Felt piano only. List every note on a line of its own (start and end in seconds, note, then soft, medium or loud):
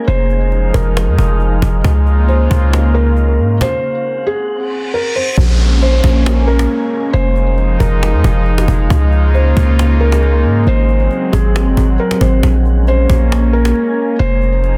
0.07 0.70 C5 loud
0.74 1.80 A#4 medium
2.28 2.91 C5 medium
2.94 3.57 A#4 medium
3.62 4.24 C5 loud
4.27 4.89 G#4 medium
4.94 5.15 A#4 medium
5.16 5.36 C5 medium
5.82 6.44 C5 medium
6.48 7.10 A#4 medium
7.13 7.76 C5 loud
7.80 8.86 A#4 medium
9.34 9.97 C5 medium
10.00 10.63 A#4 medium
10.67 11.29 C5 loud
11.32 11.95 G#4 medium
12.00 12.20 A#4 medium
12.21 12.42 C5 medium
12.88 13.50 C5 medium
13.53 14.16 A#4 medium
14.19 14.78 C5 loud